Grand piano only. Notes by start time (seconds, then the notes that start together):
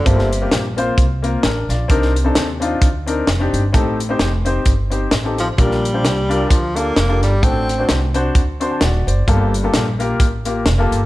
0.05 G2 A#3 C4 F4 A4
0.41 A#3 C4 F4 G4
0.77 A#3 C4 F4 C5
1.23 A#3 C4 F4 A#4
1.43 D4 A#4
1.69 F4 D5
1.88 C3 C4 D4 D#4 A#4
2.24 C4 D4 D#4 A4
2.60 C4 D4 D#4 F4
3.06 C4 D4 D#4 A#4
3.39 C4 D4 D#4 G4
3.73 A2 C4 D#4 G4 A4
4.09 C4 D#4 G4 C5
4.45 C4 D#4 G4 C5
4.90 C4 D#4 G4 C5
5.24 C4 D#4 G4 A4
5.57 A#2 D4 F4 G4 A#4
5.93 D4 F4 G4 C5
6.29 D4 F4 G4 A#4
6.75 D4 F4 G4 A4
7.08 D4 F4 G4 A4
7.42 A2 C4 D4 F#4 A4
7.78 C4 D4 F#4 C5
8.14 C4 D4 F#4 C5
8.60 C4 D4 F#4 C5 C6
8.71 A5
8.82 F#4 D5 F#5
9.07 C5 D5
9.27 G2 A#3 F4 G4 A4
9.63 A#3 F4 G4 A4
9.99 A#3 F4 G4 A#4
10.45 A#3 F4 G4 A#4
10.78 A#3 F4 G4 A4